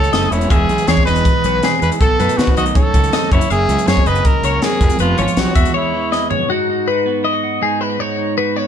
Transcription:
0.00 0.13 F#2 medium
0.00 0.51 F#3 medium
0.00 0.49 A3 medium
0.00 0.32 A4 medium
0.00 0.12 C#5 medium
0.00 closed hi-hat soft
0.13 0.30 F#1 medium
0.13 0.32 G#2 medium
0.13 0.32 D#5 medium
0.13 snare medium
0.13 closed hi-hat soft
0.31 0.48 E1 medium
0.31 0.50 F#2 medium
0.31 0.52 E4 medium
0.31 0.51 C#5 medium
0.31 closed hi-hat soft
0.41 closed hi-hat medium
0.50 0.65 E1 medium
0.50 2.00 E2 medium
0.50 0.87 E3 medium
0.50 0.70 G#3 medium
0.50 1.45 F#4 medium
0.50 0.90 G#4 medium
0.50 0.88 E5 medium
0.50 kick loud
0.50 closed hi-hat medium
0.69 0.76 B1 medium
0.69 1.06 G#3 medium
0.69 closed hi-hat medium
0.78 closed hi-hat medium
0.88 0.95 E2 medium
0.88 1.81 E3 medium
0.88 1.07 G#4 medium
0.88 1.05 C#5 medium
0.88 snare loud
0.88 closed hi-hat medium
0.97 kick medium
1.05 1.21 E1 medium
1.05 1.63 G#3 soft
1.05 1.77 B4 medium
1.05 1.44 D#5 medium
1.05 closed hi-hat medium
1.15 closed hi-hat medium
1.25 1.82 B2 medium
1.25 kick loud
1.25 closed hi-hat medium
1.44 1.58 B1 medium
1.44 2.95 F#4 medium
1.44 1.64 B4 medium
1.44 closed hi-hat medium
1.63 1.99 G#3 medium
1.63 2.01 G#4 medium
1.63 snare loud
1.63 closed hi-hat medium
1.82 1.89 E2 medium
1.82 1.98 E3 medium
1.82 1.90 B4 medium
1.82 closed hi-hat medium
1.92 closed hi-hat medium
2.00 2.15 B1 medium
2.00 2.38 B2 medium
2.00 2.39 A4 medium
2.00 2.20 A4 medium
2.00 kick loud
2.00 closed hi-hat medium
2.20 2.27 F#2 medium
2.20 2.57 A3 medium
2.20 2.57 B4 medium
2.20 closed hi-hat medium
2.29 closed hi-hat medium
2.37 2.45 B2 medium
2.37 3.30 D#3 medium
2.37 2.56 F#4 medium
2.37 snare loud
2.37 closed hi-hat medium
2.47 kick medium
2.57 2.71 B1 medium
2.57 3.12 A3 soft
2.57 2.65 F#4 medium
2.57 2.76 D#5 medium
2.57 closed hi-hat medium
2.66 closed hi-hat medium
2.75 3.29 F#2 medium
2.75 3.34 A4 medium
2.75 3.13 C#5 medium
2.75 kick loud
2.75 closed hi-hat medium
2.94 3.08 C#2 medium
2.94 3.30 F#4 medium
2.94 kick medium
2.94 closed hi-hat medium
3.04 closed hi-hat medium
3.13 3.30 A3 medium
3.13 3.32 D#5 medium
3.13 snare loud
3.13 closed hi-hat medium
3.31 3.39 F#1 medium
3.31 4.79 F#2 medium
3.31 3.51 E4 medium
3.31 3.50 C#5 medium
3.31 kick medium
3.31 closed hi-hat soft
3.41 closed hi-hat medium
3.50 3.65 F#1 medium
3.50 3.88 A#3 medium
3.50 3.89 G#4 loud
3.50 3.88 E5 medium
3.50 closed hi-hat medium
3.68 3.76 C#2 medium
3.68 4.62 F#3 medium
3.68 closed hi-hat soft
3.78 closed hi-hat medium
3.88 3.95 F#2 medium
3.88 4.44 A#3 soft
3.88 4.07 G#4 medium
3.88 4.08 C#5 medium
3.88 snare loud
3.88 closed hi-hat medium
3.97 kick medium
4.06 4.20 F#1 medium
4.06 4.63 C#3 medium
4.06 4.28 B4 medium
4.06 4.44 D#5 medium
4.06 closed hi-hat medium
4.15 closed hi-hat medium
4.25 4.82 E4 medium
4.25 4.64 A#4 medium
4.25 kick loud
4.25 closed hi-hat medium
4.43 4.58 C#2 medium
4.43 4.80 A#3 medium
4.43 4.63 C#5 medium
4.43 closed hi-hat medium
4.62 4.80 F#3 medium
4.62 5.00 G#4 medium
4.62 5.00 A#4 medium
4.62 snare loud
4.62 closed hi-hat medium
4.81 4.88 F1 medium
4.81 5.54 F2 medium
4.81 kick medium
4.81 closed hi-hat medium
4.89 closed hi-hat medium
4.99 5.14 F1 medium
4.99 5.36 B3 medium
4.99 5.40 F4 medium
4.99 5.18 B4 medium
4.99 closed hi-hat medium
5.18 5.26 G#1 medium
5.18 5.54 F3 medium
5.18 5.55 C#5 medium
5.18 closed hi-hat medium
5.28 closed hi-hat medium
5.37 5.44 B1 medium
5.37 5.54 B3 medium
5.37 5.76 F#4 medium
5.37 snare loud
5.37 closed hi-hat medium
5.55 5.63 E1 medium
5.55 6.50 E2 medium
5.55 5.74 E5 medium
5.55 kick medium
5.55 closed hi-hat medium
5.65 closed hi-hat medium
5.74 6.12 G#3 medium
5.74 6.28 E4 medium
5.74 6.12 C#5 medium
5.94 6.48 E3 medium
6.12 6.48 G#3 medium
6.12 6.30 D#5 medium
6.12 snare medium
6.30 6.48 B2 medium
6.30 6.50 C#5 medium
6.30 floor tom medium
6.50 7.60 G#2 medium
6.50 6.69 D#4 medium
6.50 6.87 F#4 medium
6.50 6.88 F#4 medium
6.70 7.61 D#4 medium
6.88 7.06 F#4 medium
6.88 7.25 B4 medium
7.06 8.55 B3 medium
7.06 7.24 F#4 medium
7.24 7.33 E4 medium
7.24 7.62 D#5 medium
7.33 7.42 F#4 medium
7.43 7.80 F#4 medium
7.61 7.97 G#2 medium
7.61 7.97 D#4 medium
7.61 7.81 G#4 medium
7.81 7.90 E4 medium
7.81 8.00 B4 medium
7.90 7.99 F#4 medium
8.00 8.67 G#2 medium
8.00 8.17 D#4 medium
8.00 8.38 F#4 medium
8.00 8.37 C#5 medium
8.18 8.67 D#4 medium
8.38 8.56 F#4 medium
8.38 8.56 B4 medium
8.56 8.67 B3 medium
8.56 8.67 F#4 medium
8.56 8.67 C#5 medium

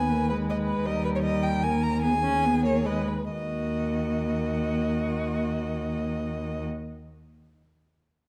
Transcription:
0.00 0.83 D#2 soft
0.00 0.13 B3 soft
0.00 0.50 B4 soft
0.00 0.29 G#5 medium
0.11 0.33 A#3 soft
0.30 0.88 G#3 soft
0.30 0.38 B4 medium
0.50 0.88 B4 soft
0.50 0.57 D#5 medium
0.68 0.87 B4 medium
0.86 3.05 D#2 soft
0.86 1.66 G3 soft
0.86 1.24 A#4 medium
0.86 1.04 D#5 medium
1.05 1.09 B4 medium
1.15 1.19 C#5 soft
1.22 2.04 A#4 medium
1.22 1.44 D#5 medium
1.43 1.64 G5 medium
1.63 2.03 A#3 soft
1.63 1.84 G#5 medium
1.83 2.01 A#5 medium
2.02 2.11 B3 soft
2.02 2.87 G#4 medium
2.02 2.63 G#5 medium
2.24 2.47 C#4 medium
2.45 2.66 B3 soft
2.65 2.88 A#3 soft
2.65 2.87 C#5 medium
2.86 3.09 G#3 soft
2.86 3.08 B4 soft
2.86 3.09 D#5 medium
3.08 3.30 B4 soft
3.30 6.64 D#2 soft
3.30 6.64 A#3 soft
3.30 6.65 F#4 soft
3.30 6.64 D#5 soft

